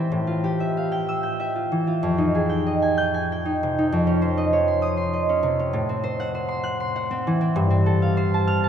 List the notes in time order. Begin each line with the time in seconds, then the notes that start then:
Already playing: A2 E3 A3 C4 G4 A4 B4 C5 G5 A5 B5 C6
0.12 A2
0.27 F4
0.44 G4
0.60 E5
0.77 F5
0.92 G5
1.09 E6
1.23 G5
1.40 E5
1.55 F4
1.72 E3
1.87 F4
2.03 F2
2.18 D#4
2.35 G#4
2.49 G5
2.67 D#5
2.82 G#5
2.98 G6
3.14 G#5
3.32 G5
3.45 D#4
3.63 C3
3.78 D#4
3.92 F2
4.07 C#4
4.22 C5
4.38 D#5
4.53 C#5
4.68 C6
4.82 D#6
4.97 C6
5.13 D#5
5.29 C#4
5.43 C3
5.59 C#4
5.73 A2
5.89 C4
6.04 C5
6.20 F#5
6.35 C5
6.48 C6
6.64 F#6
6.80 C6
6.96 F#5
7.11 C4
7.27 E3
7.41 C4
7.56 G2
7.70 C4
7.86 A4
8.02 F5
8.17 C5
8.34 A5
8.47 F6
8.64 A5